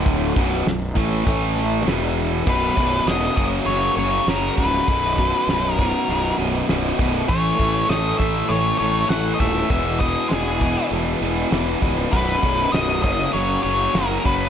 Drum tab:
CC |--------|x-------|--------|--------|
HH |o-o-o-o-|--o-o-o-|o-o-o-o-|o-o-o-o-|
SD |--o--oo-|--o---o-|--o---o-|--o---o-|
BD |oo-oo---|oo-o---o|oo-o---o|oo-o---o|

CC |--------|--------|
HH |o-o-o-o-|o-o-o-o-|
SD |--o---o-|--oo--o-|
BD |oo-o---o|oo-o---o|